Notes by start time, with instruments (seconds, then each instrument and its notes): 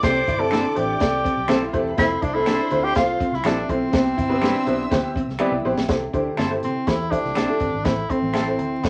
Already playing: string section D5 D6
0.03 fingered electric bass C2, upright piano C3 A3 C4 E4 G4 C5, hollow-body jazz guitar C4, tenor saxophone C5, kick, snare, closed hi-hat
0.28 fingered electric bass G1, hollow-body jazz guitar E4, kick, closed hi-hat
0.38 upright piano A3 C4 E4 G4 C5, tenor saxophone A4
0.51 clean electric guitar C4 E4 A4 C5, hollow-body jazz guitar D4, finger snap, snare, closed hi-hat
0.75 fingered electric bass A1, upright piano A3 C4 E4 G4 C5, tenor saxophone G4, closed hi-hat
0.99 fingered electric bass C2, upright piano A3 C4 E4 G4 D5, kick, snare, closed hi-hat
1.24 hollow-body jazz guitar C4, kick, closed hi-hat
1.37 fingered electric bass B1
1.48 fingered electric bass B1, upright piano A3 C4 E4 G4 C5, clean electric guitar C4 E4 A4 C5, hollow-body jazz guitar E4, finger snap, snare, closed hi-hat
1.66 string section F4 F5
1.73 fingered electric bass E1, upright piano A3 C4 E4 G4 C5, string section G4 G5, kick, closed hi-hat
1.81 string section A4 A5
1.89 string section B4 B5
1.97 fingered electric bass F1, upright piano A3 C4 E4 F4 C5, tenor saxophone E4, hollow-body jazz guitar F4, string section C5 C6, kick, snare, closed hi-hat
2.22 fingered electric bass C2, tenor saxophone D4, hollow-body jazz guitar E4, kick, closed hi-hat
2.34 upright piano A3 C4 E4 F4 A4, tenor saxophone E4
2.46 clean electric guitar C4 E4 A4 C5, hollow-body jazz guitar D4, finger snap, snare, closed hi-hat
2.70 fingered electric bass D2, upright piano A3 C4 E4 F4 C5, closed hi-hat
2.83 tenor saxophone G4
2.95 fingered electric bass C2, upright piano A3 C4 E4 F4 C5, tenor saxophone F4, kick, snare, closed hi-hat
3.20 hollow-body jazz guitar C4, kick, closed hi-hat
3.32 fingered electric bass C2, tenor saxophone E4, snare
3.44 fingered electric bass A#1, upright piano A3 C4 E4 F4 G4, clean electric guitar C4 E4 A4 C5, tenor saxophone D4, hollow-body jazz guitar E4, finger snap, snare, closed hi-hat
3.69 fingered electric bass B1, upright piano A3 C4 E4 F4 C5, tenor saxophone C4, kick, closed hi-hat
3.92 fingered electric bass C2, upright piano C3 B3 C4 E4 G4 C5, hollow-body jazz guitar C4, string section E5 E6, kick, snare, closed hi-hat
4.17 fingered electric bass G1, hollow-body jazz guitar E4, kick, closed hi-hat
4.29 upright piano B3 C4 E4 G4 B4
4.42 clean electric guitar G3 C4 E4 B4, hollow-body jazz guitar D4, finger snap, snare, closed hi-hat
4.66 fingered electric bass B1, upright piano B3 C4 E4 G4 C5, closed hi-hat
4.91 fingered electric bass D2, upright piano B3 C4 E4 G4 C5, kick, snare, closed hi-hat
5.16 hollow-body jazz guitar C4, kick, closed hi-hat
5.28 fingered electric bass C2, snare
5.39 clean electric guitar G3 C4 E4 B4, upright piano B3 C4 E4 G4 D5, hollow-body jazz guitar E4, finger snap
5.52 fingered electric bass C2
5.65 fingered electric bass A#1, upright piano B3 C4 E4 G4 C5
5.77 fingered electric bass B1, snare
5.88 fingered electric bass C2, upright piano C3 A3 E4 G4 C5, hollow-body jazz guitar C4, kick, snare, closed hi-hat
6.13 fingered electric bass D2, upright piano A3 E4 G4 C5, hollow-body jazz guitar D4, kick, closed hi-hat
6.37 fingered electric bass G1, clean electric guitar C4 E4 A4 C5, hollow-body jazz guitar E4, finger snap, snare, closed hi-hat
6.50 upright piano A3 E4 G4 C5
6.63 fingered electric bass C3, tenor saxophone C4, closed hi-hat
6.87 fingered electric bass E2, upright piano A3 E4 G4 C5, tenor saxophone E4, kick, snare, closed hi-hat
7.10 upright piano A3 E4 G4 C5, tenor saxophone D4, hollow-body jazz guitar E4, kick, closed hi-hat
7.25 fingered electric bass C2, snare
7.35 fingered electric bass B1, clean electric guitar C4 E4 A4 C5, hollow-body jazz guitar D4, finger snap, snare, closed hi-hat
7.49 upright piano A3 E4 G4 A4
7.60 fingered electric bass G1, hollow-body jazz guitar C4, kick, closed hi-hat
7.74 fingered electric bass G#1
7.84 fingered electric bass A1, upright piano A2 A3 C4 E4 C5, hollow-body jazz guitar A3, tenor saxophone E4, kick, snare, closed hi-hat
8.09 upright piano A3 C4 E4 C5, hollow-body jazz guitar C4, tenor saxophone C4, kick, closed hi-hat
8.22 fingered electric bass A1
8.33 clean electric guitar C4 E4 A4 C5, hollow-body jazz guitar E4, finger snap, snare, closed hi-hat
8.47 upright piano A3 C4 E4 C5
8.58 fingered electric bass D2, closed hi-hat
8.83 fingered electric bass C2, tenor saxophone A3, upright piano A3 C4 E4 C5, kick, snare, closed hi-hat